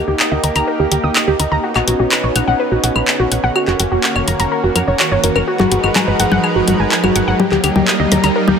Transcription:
Already playing: analog synth pad A#3 D#4 G4, riser
0.08 analog synth bass D#2, synth arpeggio sound G4
0.20 synth arpeggio sound D#6, clap
0.32 analog synth bass D#2, synth arpeggio sound D#5
0.44 analog synth bass D#2, synth arpeggio sound A#5, open hi-hat
0.56 analog synth bass D#2, synth arpeggio sound A#5, open hi-hat, claves
0.68 synth arpeggio sound A#4
0.80 analog synth bass D#2, synth arpeggio sound G4
0.92 analog synth bass D#2, synth arpeggio sound G4, open hi-hat
1.04 analog synth bass D#2, synth arpeggio sound D#6
1.16 synth arpeggio sound D#6, clap, claves
1.28 analog synth bass D#2, synth arpeggio sound G4
1.40 analog synth bass D#2, synth arpeggio sound A#5, open hi-hat
1.52 analog synth bass D#2, synth arpeggio sound A#5
1.64 analog synth pad B3 C#4, synth arpeggio sound F#4
1.76 analog synth bass B1, synth arpeggio sound F#4, clap, claves
1.88 analog synth bass B1, synth arpeggio sound F#4, open hi-hat
2.00 analog synth bass B1, synth arpeggio sound F#4
2.12 synth arpeggio sound B5, clap
2.24 analog synth bass B1, synth arpeggio sound C#5
2.36 analog synth bass B1, synth arpeggio sound F#5, open hi-hat, claves
2.48 analog synth bass B1, synth arpeggio sound F#5
2.60 synth arpeggio sound B4
2.72 analog synth bass B1, synth arpeggio sound F#4
2.84 analog synth bass B1, synth arpeggio sound F#4, open hi-hat
2.96 analog synth bass B1, synth arpeggio sound B5, claves
3.08 synth arpeggio sound B5, clap
3.20 analog synth bass B1, synth arpeggio sound F#4
3.32 analog synth bass B1, synth arpeggio sound F#5, open hi-hat
3.44 analog synth bass B1, synth arpeggio sound F#5
3.56 analog synth pad A#3 F#4, synth arpeggio sound F#4, claves
3.68 analog synth bass F#1, synth arpeggio sound F#4, clap
3.80 analog synth bass F#1, synth arpeggio sound F#4, open hi-hat
3.92 analog synth bass F#1, synth arpeggio sound F#4
4.04 synth arpeggio sound C#6, clap
4.16 analog synth bass F#1, synth arpeggio sound C#5, claves
4.28 analog synth bass F#1, synth arpeggio sound A#5, open hi-hat
4.40 analog synth bass F#1, synth arpeggio sound A#5, open hi-hat
4.52 synth arpeggio sound A#4
4.64 analog synth bass F#1, synth arpeggio sound F#4
4.76 analog synth bass F#2, synth arpeggio sound A#4, open hi-hat, claves
4.88 analog synth bass F#1, synth arpeggio sound C#5
5.00 synth arpeggio sound C#5, clap
5.12 analog synth bass G#1, synth arpeggio sound C#5
5.24 analog synth bass F#1, synth arpeggio sound A#4, open hi-hat
5.36 analog synth bass F#1, synth arpeggio sound A#4, claves
5.48 analog synth pad G#3 D#4 A#4 B4, synth arpeggio sound F#4
5.60 analog synth bass G#1, synth arpeggio sound F#4, clap, low conga
5.72 analog synth bass G#1, synth arpeggio sound F#4, open hi-hat
5.84 analog synth bass G#1, synth arpeggio sound F#4, claves
5.96 synth arpeggio sound G#5, clap, low conga
6.08 analog synth bass G#1, synth arpeggio sound B4
6.20 analog synth bass G#1, synth arpeggio sound F#5, open hi-hat
6.32 analog synth bass G#1, synth arpeggio sound F#5, low conga
6.44 synth arpeggio sound G#4, claves
6.56 analog synth bass G#1, synth arpeggio sound F#4
6.68 analog synth bass G#1, synth arpeggio sound F#4, open hi-hat, low conga
6.80 analog synth bass G#1, synth arpeggio sound G#5
6.92 synth arpeggio sound G#5, clap
7.04 analog synth bass G#1, synth arpeggio sound F#4, low conga, claves
7.16 analog synth bass G#1, synth arpeggio sound F#5, open hi-hat
7.28 analog synth bass G#1, synth arpeggio sound F#5
7.40 analog synth pad G3 A#3 D#4, synth arpeggio sound G4, low conga
7.52 analog synth bass D#2, synth arpeggio sound G4, clap
7.64 analog synth bass D#2, synth arpeggio sound G4, open hi-hat, claves
7.76 analog synth bass D#2, synth arpeggio sound G4, low conga
7.88 synth arpeggio sound D#6, clap
8.00 analog synth bass D#2, synth arpeggio sound D#5
8.12 analog synth bass D#2, synth arpeggio sound A#5, open hi-hat, low conga
8.24 analog synth bass D#2, synth arpeggio sound A#5, open hi-hat, claves
8.36 synth arpeggio sound A#4
8.48 analog synth bass D#2, synth arpeggio sound G4, low conga

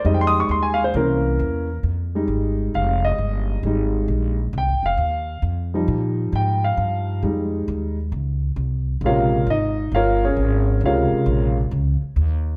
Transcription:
0.04 upright bass F2, grand piano G3 G#3 D#4 D#5
0.14 grand piano G5
0.21 grand piano C6
0.27 grand piano D#6
0.40 grand piano C#6
0.49 upright bass D#2, grand piano C6
0.62 grand piano G#5
0.74 grand piano F5
0.84 grand piano C5
0.94 upright bass C2, grand piano E3 A#3 C#4 A#4
1.39 upright bass E2
1.83 upright bass F2
2.15 grand piano G3 G#3 D#4
2.28 upright bass G#1
2.74 upright bass F1, grand piano F5
3.04 grand piano D#5
3.18 upright bass G1
3.63 upright bass G#1, grand piano G3 G#3 D#4
4.08 upright bass A#1
4.53 upright bass C2
4.58 grand piano G5
4.68 upright bass G#1
4.83 upright bass F1, grand piano F5
4.97 upright bass D#2
5.42 upright bass F2
5.74 grand piano F3 G3 D#4
5.88 upright bass A#2
6.32 upright bass G#2, grand piano G5
6.64 grand piano F5
6.77 upright bass G2
7.23 upright bass F2, grand piano G3 G#3 D#4
7.68 upright bass D#2
8.12 upright bass C#2
8.56 upright bass C2
9.01 upright bass A#1, grand piano C3 C#3 G#3
9.06 grand piano F4 A#4 C#5 F5
9.47 upright bass G#1, grand piano D#4 D#5
9.92 upright bass G1, grand piano C#5 F5
9.96 grand piano F4 A#4
10.25 grand piano C#4 G#4 A#4 C#5
10.36 upright bass G#1
10.81 upright bass C#2, grand piano C#3 G#3
10.85 grand piano C3 F4 A#4 C#5 F5
11.12 muted upright bass stroke
11.26 upright bass A#1
11.71 upright bass C#2
12.02 muted upright bass stroke
12.16 upright bass D#2

